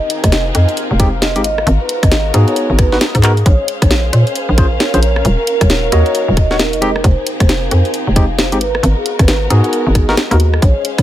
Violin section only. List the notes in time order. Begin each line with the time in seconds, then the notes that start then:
Already playing: C4 D#4 G4 G#4
1.44 B3 D#4 F#4 A#4
3.46 C#4 G#4 C5 F5
5.25 F#4 A#4
6.82 C4 D#4 G4 G#4
8.61 B3 F#4 A#4
10.62 C#4 G#4 C5 F5